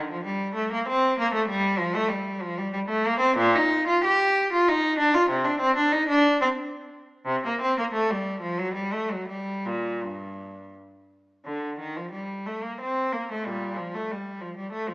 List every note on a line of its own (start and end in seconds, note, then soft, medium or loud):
0.11 0.23 F3 medium
0.24 0.54 G3 medium
0.55 0.69 A3 medium
0.72 0.86 A#3 medium
0.88 1.17 C4 medium
1.19 1.32 A#3 medium
1.34 1.47 A3 medium
1.48 1.78 G3 medium
1.78 1.93 F3 medium
1.95 2.10 A3 medium
2.08 2.40 G3 medium
2.41 2.57 F3 medium
2.57 2.71 G3 medium
2.73 2.79 G3 medium
2.89 3.04 A3 medium
3.06 3.22 A#3 medium
3.20 3.37 C4 medium
3.37 3.55 A#2 loud
3.55 3.88 D#4 medium
3.87 4.03 F4 medium
4.04 4.50 G4 loud
4.53 4.67 F4 medium
4.68 4.98 D#4 medium
4.98 5.13 D4 medium
5.14 5.29 F4 medium
5.30 5.44 C3 medium
5.44 5.60 D4 medium
5.60 5.75 C4 medium
5.76 5.92 D4 medium
5.92 6.08 D#4 medium
6.09 6.40 D4 medium
6.41 6.47 C4 medium
7.25 7.42 C3 medium
7.46 7.60 A#3 medium
7.61 7.76 C4 medium
7.78 7.84 A#3 medium
7.93 8.09 A3 medium
8.10 8.43 G3 medium
8.41 8.59 F3 medium
8.58 8.76 F#3 medium
8.74 8.93 G3 medium
8.93 9.12 A3 medium
9.11 9.30 F#3 medium
9.28 9.65 G3 medium
9.65 10.03 A#2 medium
10.01 10.74 G2 medium
11.45 11.77 D3 medium
11.79 11.96 D#3 medium
11.96 12.13 F3 medium
12.12 12.44 G3 medium
12.46 12.62 A3 medium
12.62 12.78 A#3 medium
12.81 13.12 C4 medium
13.12 13.28 A#3 medium
13.32 13.46 A3 medium
13.45 13.74 A#2 soft
13.45 13.76 G3 medium
13.77 13.92 F3 medium
13.94 14.08 A3 medium
14.11 14.41 G3 medium
14.41 14.56 F3 medium
14.57 14.72 G3 medium
14.72 14.87 A3 medium
14.87 14.94 F3 medium